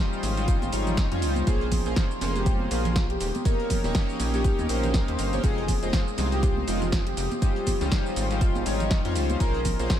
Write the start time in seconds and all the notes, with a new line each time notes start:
Already playing: G3 C#4 D#4 F4 C5 F5 G5 C6 D#6
0.13 shaker
0.23 G#1 G3 C#4 D#4 F4 C5, closed hi-hat, open hi-hat, high conga, shaker
0.37 G3 C#4 D#4 F4 C5, snare, closed hi-hat, shaker
0.48 kick, closed hi-hat, shaker
0.62 G#1, closed hi-hat, high conga, shaker
0.72 G#1 G3 C#4 D#4 F4 C#5, closed hi-hat, open hi-hat, shaker
0.87 snare, closed hi-hat, low conga, shaker
0.97 kick, snare, closed hi-hat, high conga, shaker
1.11 F2 G3 C#4 D#4 F4 C#5, closed hi-hat
1.22 C#2 G3 C#4 D#4 F4 C5, closed hi-hat, open hi-hat, shaker
1.36 closed hi-hat, high conga, shaker
1.47 A#1 A#3 C#4 F4 G#4 C5 A#5 C6, kick, closed hi-hat, shaker
1.61 closed hi-hat
1.72 kick, closed hi-hat, open hi-hat, high conga, low conga, shaker
1.86 A#1 A#3 C#4 F4 G#4 C5, closed hi-hat, shaker
1.96 kick, snare, closed hi-hat, shaker
2.11 shaker
2.21 F1 A#3 C#4 F4 G#4 C5, snare, closed hi-hat, open hi-hat, high conga, shaker
2.35 G#3 A#3 C#4 F4 G4 C5, closed hi-hat, shaker
2.46 kick, closed hi-hat, shaker
2.60 high conga
2.71 A#1 A#3 C#4 F4 G#4 C5, closed hi-hat, open hi-hat, shaker
2.85 snare, closed hi-hat, low conga, shaker
2.96 kick, snare, closed hi-hat, shaker
3.10 G4, closed hi-hat
3.21 D#1 C#4 G5 D#6, snare, closed hi-hat, open hi-hat, shaker
3.35 closed hi-hat, high conga, shaker
3.45 A#3 C#4 D#4 G4 A#4 C#5, kick, closed hi-hat, shaker
3.60 closed hi-hat
3.70 kick, closed hi-hat, open hi-hat, high conga, low conga, shaker
3.84 D#1 A#3 C#4 D#4 G4 C#5, snare, closed hi-hat, shaker
3.95 kick, snare, closed hi-hat, shaker
4.09 shaker
4.19 A#1 A#3 C#4 D#4 G4 C#5, closed hi-hat, open hi-hat, high conga, shaker
4.34 A#3 C#4 D#4 G4 C#5, snare, closed hi-hat, shaker
4.44 kick, closed hi-hat, shaker
4.59 D#2, closed hi-hat, high conga, shaker
4.69 A#1 A#3 C#4 D#4 G4 A#4 C5, closed hi-hat, open hi-hat, shaker
4.83 snare, closed hi-hat, low conga, shaker
4.94 A#3 C#4 D#4 G4 F5, kick, snare, closed hi-hat, high conga, shaker
5.08 D#2 C5, closed hi-hat
5.19 G1, closed hi-hat, open hi-hat, shaker
5.33 A#3 C#4 D#4 G4 C#5, closed hi-hat, high conga, shaker
5.43 F1 G#3 C4 D#4 F4 G#4 C5 F5, kick, closed hi-hat, shaker
5.58 closed hi-hat
5.68 kick, closed hi-hat, open hi-hat, high conga, low conga, shaker
5.83 F1 G#3 C4 D#4 F4 C5, closed hi-hat, shaker
5.93 kick, snare, closed hi-hat, shaker
6.08 shaker
6.18 C2 G#3 C4 D#4 F4 C5, snare, closed hi-hat, open hi-hat, high conga, shaker
6.32 G#3 C4 D#4 F4 G4 C5, closed hi-hat, shaker
6.43 kick, closed hi-hat, shaker
6.57 high conga
6.67 F1 G#3 C4 D#4 F4 C5, closed hi-hat, open hi-hat, shaker
6.82 snare, closed hi-hat, low conga, shaker
6.92 kick, snare, closed hi-hat, high conga, shaker
7.07 G4, closed hi-hat
7.17 F1, snare, closed hi-hat, open hi-hat, shaker
7.32 closed hi-hat, high conga, shaker
7.42 G3 C#4 D#4 F4 G4 C5 G5 C6, kick, closed hi-hat, shaker
7.56 closed hi-hat
7.66 kick, closed hi-hat, open hi-hat, high conga, low conga, shaker
7.81 C#2 G3 C#4 D#4 F4 C5, snare, closed hi-hat, shaker
7.92 kick, snare, closed hi-hat, shaker
8.06 shaker
8.16 G#1 G3 C#4 D#4 F4 C5, closed hi-hat, open hi-hat, high conga, shaker
8.30 G3 C#4 D#4 F4 C5, snare, closed hi-hat, shaker
8.41 kick, closed hi-hat, shaker
8.55 G#1, closed hi-hat, high conga, shaker
8.66 G#1 G3 C#4 D#4 F4 C#5, closed hi-hat, open hi-hat, shaker
8.80 snare, closed hi-hat, low conga, shaker
8.91 kick, snare, closed hi-hat, high conga, shaker
9.05 F2 G3 C#4 D#4 F4 C#5, closed hi-hat
9.15 C#2 G3 C#4 D#4 F4 C5, closed hi-hat, open hi-hat, shaker
9.30 closed hi-hat, high conga, shaker
9.40 A#1 A#3 C#4 F4 G#4 A#4 C5 A#5, kick, closed hi-hat, shaker
9.55 closed hi-hat
9.65 kick, closed hi-hat, open hi-hat, high conga, low conga, shaker
9.79 A#1 A#3 C#4 F4 G#4 C5, closed hi-hat, shaker
9.90 kick, snare, closed hi-hat, shaker